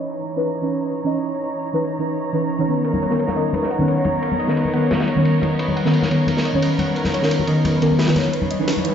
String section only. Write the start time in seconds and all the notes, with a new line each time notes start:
Already playing: E3 D#4 C#5
0.11 A#5
2.68 B3
5.42 A#4
8.34 E3 D#4 B4 C#5